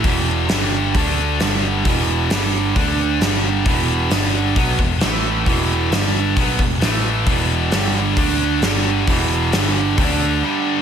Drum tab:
HH |o-o-o-o-|o-o-o-o-|o-o-o-o-|o-o-o-o-|
SD |--o---o-|--o---o-|--o---o-|--o---o-|
BD |o---o---|o---o---|o---oo--|o---oo--|

HH |o-o-o-o-|o-o-o---|
SD |--o---o-|--o-----|
BD |o---o---|o---o---|